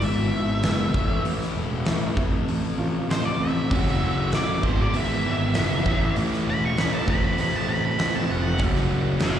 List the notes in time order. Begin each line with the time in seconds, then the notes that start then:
Already playing: E2 B2 E3
0.02 G#1 G#3 E5, open hi-hat
0.33 G#1 E4
0.63 F#1 G#3, snare, open hi-hat
0.93 A1 A2 E3 A3, kick
1.24 A1 A2, open hi-hat
1.42 snare
1.55 E1
1.85 A1 E4, snare, open hi-hat
2.16 A1 F2 A2 C3 F3, kick
2.48 A1 A3, open hi-hat
2.79 A1 F4
3.10 A1 A3 C5, snare, open hi-hat
3.25 D5
3.41 A1 C4 E5
3.70 F#1 F#2 C#3 F#3 A3 C#4 F#4, kick, open hi-hat
3.88 snare
4.03 F#1
4.32 A1 D5, snare, open hi-hat
4.62 G#1 E2 G#2 B2 E3 G#3 B3 E4, kick
4.66 C5
4.82 D5
4.94 G#1 E5, open hi-hat
5.26 G#1
5.54 F#1 G#2 E3 G#3 B3 E4, snare, open hi-hat
5.83 A1 A2 E3 A3 C#4 E4, kick
5.88 E3 A3
6.16 A1, open hi-hat
6.33 snare
6.47 E1 B5
6.65 C#6
6.76 A1 A2 E3 A3 C#4 E4 B5, snare, open hi-hat
6.94 A5
7.06 A1 F2 A2 C3 F3 A3 C4 F4, kick
7.10 F3 B5
7.24 B5
7.38 A1 B5, open hi-hat
7.56 A5
7.69 A1 B5
7.85 B5
7.98 A1 A2 F3 A3 C4 F4 B5, snare, open hi-hat
8.16 A5
8.30 F1 F#5
8.57 F#1 F#2 C#3 F#3 A3 C#4 F#4, kick, open hi-hat
8.62 F#3
8.76 snare
8.90 F#1
9.19 F#1 C#5, snare, open hi-hat
9.24 A5